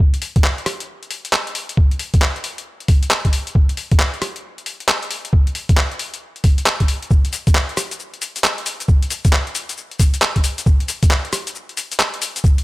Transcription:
0.00 kick loud
0.14 closed hi-hat medium
0.22 open hi-hat loud
0.36 kick loud
0.36 closed hi-hat medium
0.44 clap loud
0.58 closed hi-hat soft
0.66 cross-stick medium
0.66 open hi-hat loud
0.80 closed hi-hat medium
1.03 closed hi-hat soft
1.11 open hi-hat loud
1.25 closed hi-hat medium
1.33 clap loud
1.47 closed hi-hat medium
1.55 open hi-hat loud
1.69 closed hi-hat medium
1.77 kick loud
1.91 closed hi-hat medium
1.99 open hi-hat loud
2.14 kick loud
2.14 closed hi-hat medium
2.22 clap loud
2.36 closed hi-hat soft
2.44 open hi-hat medium
2.58 closed hi-hat medium
2.80 closed hi-hat soft
2.88 kick loud
2.88 open hi-hat loud
3.03 closed hi-hat medium
3.11 clap loud
3.25 kick medium
3.25 closed hi-hat soft
3.33 open hi-hat loud
3.47 closed hi-hat medium
3.55 kick loud
3.69 closed hi-hat medium
3.77 open hi-hat loud
3.91 kick loud
3.91 closed hi-hat medium
3.99 clap loud
4.14 closed hi-hat soft
4.22 cross-stick medium
4.22 open hi-hat medium
4.36 closed hi-hat medium
4.58 closed hi-hat soft
4.66 open hi-hat loud
4.80 closed hi-hat medium
4.88 clap loud
5.03 closed hi-hat soft
5.11 open hi-hat medium
5.25 closed hi-hat medium
5.33 kick loud
5.47 closed hi-hat medium
5.55 open hi-hat loud
5.69 kick loud
5.69 closed hi-hat medium
5.77 clap loud
5.91 closed hi-hat soft
5.99 open hi-hat medium
6.14 closed hi-hat medium
6.36 closed hi-hat soft
6.44 kick loud
6.44 open hi-hat loud
6.58 closed hi-hat medium
6.66 clap loud
6.80 kick medium
6.80 closed hi-hat soft
6.88 open hi-hat medium
7.03 closed hi-hat medium
7.10 kick loud
7.10 shaker soft
7.25 closed hi-hat medium
7.33 open hi-hat loud
7.33 shaker medium
7.47 kick loud
7.47 closed hi-hat medium
7.47 shaker soft
7.55 clap loud
7.55 shaker soft
7.69 closed hi-hat soft
7.77 cross-stick medium
7.77 open hi-hat medium
7.77 shaker medium
7.91 closed hi-hat medium
7.91 shaker soft
7.99 shaker soft
8.14 closed hi-hat soft
8.22 open hi-hat loud
8.22 shaker medium
8.36 closed hi-hat medium
8.36 shaker soft
8.44 clap loud
8.44 shaker soft
8.58 closed hi-hat medium
8.66 open hi-hat medium
8.66 shaker medium
8.80 closed hi-hat medium
8.80 shaker soft
8.88 kick loud
8.88 shaker soft
9.03 closed hi-hat medium
9.10 open hi-hat loud
9.10 shaker medium
9.25 kick loud
9.25 closed hi-hat medium
9.25 shaker soft
9.33 clap loud
9.33 shaker soft
9.47 closed hi-hat soft
9.55 open hi-hat medium
9.55 shaker medium
9.69 closed hi-hat medium
9.69 shaker soft
9.77 shaker soft
9.91 closed hi-hat soft
10.00 kick loud
10.00 open hi-hat loud
10.00 shaker medium
10.14 closed hi-hat medium
10.14 shaker soft
10.22 clap loud
10.22 shaker soft
10.36 kick medium
10.36 closed hi-hat medium
10.44 open hi-hat medium
10.44 shaker medium
10.58 closed hi-hat medium
10.58 shaker soft
10.66 kick loud
10.66 shaker soft
10.80 closed hi-hat medium
10.88 open hi-hat loud
10.88 shaker medium
11.03 kick loud
11.03 closed hi-hat medium
11.03 shaker soft
11.11 clap loud
11.11 shaker soft
11.25 closed hi-hat soft
11.33 cross-stick medium
11.33 open hi-hat loud
11.33 shaker medium
11.47 closed hi-hat medium
11.47 shaker soft
11.55 shaker soft
11.69 closed hi-hat soft
11.77 open hi-hat loud
11.77 shaker medium
11.92 closed hi-hat medium
11.92 shaker soft
11.99 clap loud
11.99 shaker soft
12.14 closed hi-hat medium
12.22 open hi-hat loud
12.22 shaker medium
12.36 closed hi-hat medium
12.36 shaker soft
12.44 kick loud
12.44 shaker soft
12.58 closed hi-hat medium

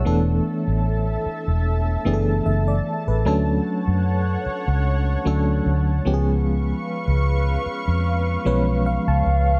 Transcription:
0.00 3.21 A4 medium
0.00 0.25 C#5 medium
0.05 0.39 E1 loud
0.05 1.37 E3 medium
0.05 1.37 A3 medium
0.05 1.37 B3 medium
0.05 1.37 D4 medium
0.05 1.38 A4 medium
0.05 3.22 E5 medium
0.05 6.01 A5 loud
0.68 1.16 A1 medium
1.26 muted fingered electric bass stroke soft
1.48 1.96 E1 medium
2.05 2.39 F#1 medium
2.05 3.04 E3 medium
2.05 3.05 A3 medium
2.05 3.05 B3 medium
2.05 3.05 D4 medium
2.05 2.13 G#4 medium
2.13 3.09 A4 medium
2.46 2.79 F#1 medium
2.46 2.66 E5 medium
2.68 3.05 D5 medium
3.08 3.26 A1 medium
3.08 3.45 B4 medium
3.25 3.59 D2 medium
3.25 4.57 F#3 medium
3.25 4.57 A3 medium
3.25 4.57 C#4 medium
3.25 4.57 D4 medium
3.25 4.58 A4 medium
3.25 6.03 C#5 medium
3.25 6.03 F#5 medium
3.88 4.36 F#2 medium
4.46 muted fingered electric bass stroke soft
4.68 5.16 C#2 medium
5.25 5.59 D2 medium
5.25 6.05 F#3 medium
5.25 6.06 A3 medium
5.25 6.05 C#4 medium
5.25 6.06 D4 medium
5.25 6.06 A4 medium
5.66 5.99 D2 medium
6.05 6.72 C#2 medium
6.05 7.37 F3 medium
6.05 7.37 G#3 medium
6.05 7.37 B3 medium
6.05 7.37 C#4 medium
6.05 6.13 G4 medium
6.05 9.60 B4 medium
6.05 9.60 F5 medium
6.05 9.60 C#6 medium
6.14 7.41 G#4 medium
7.08 7.56 C#2 medium
7.66 muted fingered electric bass stroke soft
7.88 8.36 F2 medium
8.45 8.97 B1 medium
8.45 9.45 F3 medium
8.45 9.45 G#3 medium
8.45 9.45 B3 medium
8.45 9.45 C#4 medium
8.45 9.46 B4 medium
8.45 8.83 C#5 medium
8.86 9.06 F5 medium
8.86 9.60 F5 loud
9.08 9.23 C#2 medium
9.08 9.60 A5 medium
9.26 9.59 C#2 medium

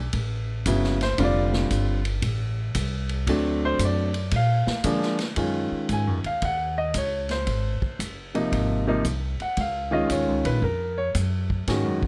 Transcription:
0.00 0.12 B1 medium
0.13 0.64 A1 medium
0.13 kick soft
0.13 ride medium
0.66 1.17 G1 medium
0.66 0.97 C#3 medium
0.66 0.97 F#3 medium
0.66 0.98 B3 medium
0.66 0.98 E4 medium
0.66 kick soft
0.66 hi-hat pedal medium
0.66 ride medium
0.84 snare soft
1.01 1.19 C5 medium
1.01 snare soft
1.01 ride soft
1.18 1.69 F1 medium
1.18 1.98 D3 medium
1.18 1.99 G3 medium
1.18 1.99 C4 medium
1.18 1.99 F4 medium
1.18 kick soft
1.18 ride medium
1.24 1.43 D5 medium
1.53 snare medium
1.71 2.21 G1 medium
1.71 kick soft
1.71 hi-hat pedal medium
1.71 ride medium
2.05 ride soft
2.22 2.73 A1 medium
2.22 kick soft
2.22 ride medium
2.75 3.26 C2 medium
2.75 kick soft
2.75 hi-hat pedal soft
2.75 ride medium
3.09 ride soft
3.27 3.78 D2 medium
3.27 4.08 F#3 medium
3.27 4.09 A3 medium
3.27 4.09 C4 medium
3.27 4.09 D4 medium
3.27 kick soft
3.27 ride medium
3.65 3.81 C5 medium
3.79 4.30 F#2 medium
3.79 kick soft
3.79 hi-hat pedal medium
3.79 ride medium
3.85 4.31 D5 medium
4.14 ride soft
4.31 4.65 A#2 medium
4.31 kick soft
4.31 ride medium
4.36 5.18 F5 medium
4.67 muted upright bass stroke soft
4.67 snare medium
4.84 5.35 D3 medium
4.84 5.16 F3 medium
4.84 5.16 G#3 medium
4.84 5.16 A#3 medium
4.84 5.16 D4 medium
4.84 kick soft
4.84 hi-hat pedal medium
4.84 ride medium
5.02 snare soft
5.19 snare soft
5.19 ride soft
5.36 5.69 F#2 medium
5.36 6.17 D#3 medium
5.36 6.17 G#3 soft
5.36 6.18 C#4 soft
5.36 6.18 F4 medium
5.36 kick soft
5.36 ride medium
5.72 muted upright bass stroke soft
5.89 6.07 G#2 medium
5.89 6.25 G#5 medium
5.89 kick soft
5.89 hi-hat pedal medium
5.89 ride medium
6.07 6.24 F#2 medium
6.24 6.41 D#2 medium
6.24 6.43 F5 medium
6.24 ride soft
6.42 6.93 D#2 medium
6.42 6.78 F#5 medium
6.42 kick soft
6.42 ride medium
6.78 6.95 D#5 medium
6.94 7.45 C#2 medium
6.94 7.30 C#5 medium
6.94 kick soft
6.94 hi-hat pedal medium
6.94 ride medium
7.29 7.96 C5 medium
7.29 snare soft
7.29 ride soft
7.47 7.79 G#1 medium
7.47 kick soft
7.47 ride medium
7.82 muted upright bass stroke soft
7.82 kick soft
7.99 8.50 F#1 medium
7.99 kick soft
7.99 hi-hat pedal medium
7.99 ride medium
8.34 8.84 C3 medium
8.34 8.84 F3 medium
8.34 8.84 A#3 medium
8.34 8.84 D#4 medium
8.34 ride soft
8.52 9.03 G#1 medium
8.52 kick soft
8.52 ride medium
8.87 9.03 C3 medium
8.87 9.04 F3 medium
8.87 9.03 A#3 medium
8.87 9.04 D#4 medium
9.04 9.37 C2 medium
9.04 kick soft
9.04 hi-hat pedal medium
9.04 ride medium
9.40 9.58 F#5 medium
9.40 muted upright bass stroke soft
9.40 ride soft
9.57 10.08 C#2 medium
9.57 9.93 F5 medium
9.57 kick soft
9.57 ride medium
9.91 10.58 D#3 medium
9.91 10.59 G#3 medium
9.91 10.59 C#4 medium
9.91 10.59 F4 medium
9.91 10.10 D#5 medium
10.10 10.27 D#2 medium
10.10 10.45 C#5 medium
10.10 kick soft
10.10 hi-hat pedal medium
10.10 ride medium
10.27 10.44 C#2 medium
10.45 10.61 A#1 medium
10.45 10.62 B4 medium
10.45 ride medium
10.62 11.13 F2 medium
10.62 10.97 A#4 medium
10.62 kick soft
10.98 11.08 C#5 medium
11.15 11.66 F#2 medium
11.15 kick soft
11.15 hi-hat pedal medium
11.15 ride medium
11.50 kick soft
11.67 11.84 G#2 medium
11.67 11.99 D#3 medium
11.67 11.99 G#3 medium
11.67 11.99 C#4 medium
11.67 12.00 F#4 medium
11.67 kick soft
11.67 snare soft
11.67 ride medium
11.84 12.01 F#2 medium
12.02 12.07 D#2 medium
12.02 kick medium

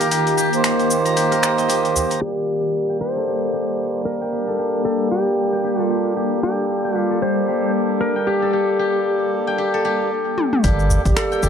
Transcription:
0.00 2.18 D#3 medium
0.00 2.18 A#3 medium
0.00 2.18 F4 medium
0.00 0.11 G4 loud
0.00 2.18 G4 medium
0.00 1.31 A#4 loud
0.00 1.05 A#5 loud
0.00 open hi-hat soft
0.00 shaker soft
0.10 0.49 D#3 medium
0.10 0.49 A#3 medium
0.10 0.37 G4 loud
0.10 0.49 G4 loud
0.10 open hi-hat medium
0.10 shaker soft
0.27 open hi-hat soft
0.27 shaker soft
0.37 1.16 G4 loud
0.37 shaker medium
0.51 2.18 D#3 loud
0.51 2.19 A#3 loud
0.51 2.20 C5 loud
0.51 open hi-hat soft
0.51 shaker soft
0.64 finger snap medium
0.64 open hi-hat medium
0.64 shaker soft
0.80 open hi-hat soft
0.80 shaker soft
0.91 shaker medium
1.05 1.42 A#5 loud
1.05 open hi-hat soft
1.05 shaker soft
1.16 1.68 G4 loud
1.16 open hi-hat medium
1.16 shaker soft
1.32 3.22 A#4 medium
1.32 open hi-hat soft
1.32 shaker soft
1.43 2.10 A#5 medium
1.43 finger snap medium
1.43 shaker medium
1.58 3.36 D#5 medium
1.58 open hi-hat soft
1.58 shaker soft
1.68 2.21 G4 medium
1.68 open hi-hat medium
1.68 shaker soft
1.85 open hi-hat soft
1.85 shaker soft
1.96 udu medium
1.96 shaker medium
2.10 3.22 A#5 medium
2.10 open hi-hat soft
2.10 shaker soft
2.20 6.39 G3 medium
2.20 10.07 G3 medium
2.20 6.40 A#3 medium
2.20 10.07 A#3 medium
2.20 10.07 D4 medium
2.20 2.97 G4 medium
2.20 6.41 A#4 medium
2.20 10.07 A5 medium
2.89 4.21 G5 medium
3.01 3.26 G4 medium
3.01 4.05 C5 medium
3.16 4.47 A4 medium
3.27 3.53 G4 medium
3.53 4.32 G4 medium
4.05 4.81 A#4 medium
4.21 5.52 G5 medium
4.32 4.58 G4 medium
4.47 5.78 A4 medium
4.59 4.84 G4 medium
4.85 5.63 G4 medium
4.85 5.11 A4 medium
5.11 5.82 G4 medium
5.53 6.84 G5 medium
5.64 5.90 G4 medium
5.79 6.13 F4 medium
5.79 7.10 A4 medium
5.90 6.16 G4 medium
6.16 6.95 G4 medium
6.41 10.10 G3 medium
6.41 10.11 A#3 medium
6.41 6.98 G4 medium
6.45 10.12 A4 medium
6.84 8.15 G5 medium
6.95 7.18 F4 medium
6.95 7.21 G4 medium
7.11 8.42 A4 medium
7.22 7.48 G4 medium
7.22 7.71 C5 loud
7.48 8.26 G4 medium
8.01 8.28 A#4 loud
8.16 9.47 G5 medium
8.27 8.53 G4 medium
8.27 10.07 G4 medium
8.42 9.73 A4 medium
8.53 8.79 G4 medium
8.79 9.58 G4 medium
9.47 11.03 G5 medium
9.58 9.84 G4 medium
9.74 11.49 A4 medium
9.85 10.63 G4 loud
10.38 high tom medium
10.53 mid tom medium
10.62 10.99 G1 loud
10.62 11.01 G3 medium
10.62 11.49 G3 medium
10.62 11.02 A#3 medium
10.62 11.49 A#3 medium
10.62 11.49 D4 medium
10.62 11.42 G4 medium
10.62 11.02 A4 loud
10.62 11.49 A5 medium
10.62 kick loud
10.62 open hi-hat medium
10.62 shaker soft
10.79 shaker soft
10.90 udu medium
10.90 shaker medium
11.03 11.13 G1 medium
11.03 11.49 G3 medium
11.03 11.49 A#3 medium
11.03 kick loud
11.03 open hi-hat soft
11.03 shaker soft
11.07 11.49 G4 medium
11.17 11.49 A4 medium
11.17 finger snap medium
11.17 open hi-hat medium
11.17 shaker soft
11.32 11.49 G5 loud
11.32 shaker soft
11.43 11.49 G1 medium
11.43 11.49 G4 loud
11.43 kick loud
11.43 shaker medium

